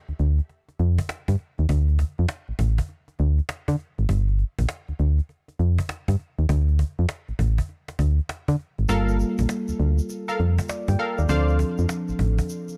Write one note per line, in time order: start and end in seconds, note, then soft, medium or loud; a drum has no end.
0.08 0.13 D2 soft
0.08 cajon slap soft
0.19 0.41 D2 medium
0.19 cajon slap soft
0.38 cajon slap soft
0.49 cajon slap soft
0.69 cajon slap soft
0.79 1.01 F2 medium
0.79 cajon slap soft
0.98 cajon bass loud
1.09 cajon slap loud
1.28 1.36 G2 medium
1.28 cajon bass medium
1.39 cajon slap soft
1.58 1.66 D#2 medium
1.58 cajon slap soft
1.69 2.04 D2 loud
1.69 cajon bass loud
1.88 cajon slap soft
1.99 cajon bass medium
2.18 2.26 F2 medium
2.18 cajon slap soft
2.29 cajon slap loud
2.48 2.53 A1 soft
2.48 cajon slap soft
2.59 2.80 A1 medium
2.59 cajon bass loud
2.78 cajon bass medium
2.89 cajon slap soft
3.08 cajon slap soft
3.19 3.41 D2 loud
3.19 cajon slap soft
3.38 cajon slap soft
3.49 cajon slap loud
3.68 3.76 D3 loud
3.68 cajon bass loud
3.79 cajon slap soft
3.98 4.06 G#1 medium
3.98 cajon slap soft
4.09 4.44 G1 loud
4.09 cajon bass loud
4.28 cajon slap soft
4.39 cajon slap soft
4.59 4.66 A#1 medium
4.59 cajon bass medium
4.69 cajon slap loud
4.88 4.93 D2 soft
4.88 cajon slap soft
4.99 5.21 D2 medium
4.99 cajon slap soft
5.18 cajon slap soft
5.29 cajon slap soft
5.48 cajon slap soft
5.59 5.80 F2 medium
5.59 cajon slap soft
5.78 cajon bass loud
5.89 cajon slap loud
6.08 6.16 G2 medium
6.08 cajon bass medium
6.19 cajon slap soft
6.38 6.46 D#2 medium
6.38 cajon slap soft
6.49 6.84 D2 loud
6.49 cajon bass loud
6.68 cajon slap soft
6.79 cajon bass medium
6.99 7.06 F2 loud
6.99 cajon slap soft
7.09 cajon slap loud
7.28 7.33 A1 soft
7.28 cajon slap soft
7.39 7.60 A1 loud
7.39 cajon bass medium
7.58 cajon bass medium
7.69 cajon slap soft
7.88 cajon slap medium
7.99 8.20 D2 medium
7.99 cajon bass loud
8.19 cajon slap soft
8.29 cajon slap loud
8.48 8.56 D3 loud
8.48 cajon bass medium
8.59 cajon slap soft
8.78 8.86 G#1 medium
8.78 cajon slap soft
8.88 9.24 G1 loud
8.88 11.25 G3 medium
8.88 11.25 A#3 medium
8.88 11.26 F4 medium
8.88 9.17 A4 loud
8.88 11.26 A4 medium
8.88 9.17 A#4 medium
8.88 9.18 F5 loud
8.88 cajon bass loud
8.88 shaker medium
9.08 cajon slap soft
9.08 shaker soft
9.19 cajon slap soft
9.19 shaker soft
9.38 9.46 A#1 medium
9.38 cajon bass medium
9.38 shaker soft
9.49 cajon slap loud
9.49 shaker medium
9.68 9.73 D2 soft
9.68 cajon slap soft
9.68 shaker medium
9.79 10.01 D2 loud
9.79 cajon slap soft
9.98 cajon slap soft
9.98 shaker medium
10.10 cajon slap soft
10.10 shaker medium
10.28 10.39 A4 medium
10.28 10.39 A#4 medium
10.28 10.39 F5 medium
10.28 cajon slap soft
10.28 shaker soft
10.39 10.61 F2 medium
10.39 cajon slap soft
10.59 cajon bass loud
10.59 shaker soft
10.69 10.88 D5 medium
10.69 cajon slap loud
10.69 shaker medium
10.88 10.96 G2 medium
10.88 10.99 G5 medium
10.88 cajon bass medium
10.88 shaker soft
10.99 11.18 A4 medium
10.99 11.18 A#4 medium
10.99 11.17 F5 medium
10.99 11.19 F5 medium
10.99 cajon slap soft
11.18 11.26 D#2 medium
11.18 11.47 D5 medium
11.18 cajon slap soft
11.18 shaker soft
11.28 11.64 D2 loud
11.28 12.77 F3 medium
11.28 12.77 C4 medium
11.28 12.77 D4 medium
11.28 12.77 A4 medium
11.28 11.57 C5 medium
11.28 11.58 D5 medium
11.28 11.58 F5 loud
11.28 cajon bass loud
11.28 shaker medium
11.48 cajon slap soft
11.48 shaker soft
11.59 cajon bass medium
11.59 shaker soft
11.78 11.86 F2 loud
11.78 cajon slap soft
11.78 shaker soft
11.89 cajon slap loud
11.89 shaker medium
12.08 12.13 A1 medium
12.08 cajon slap soft
12.08 shaker medium
12.19 12.40 A1 medium
12.19 cajon bass loud
12.38 cajon bass medium
12.38 shaker soft
12.49 cajon slap soft
12.49 shaker medium
12.68 cajon slap soft
12.68 shaker soft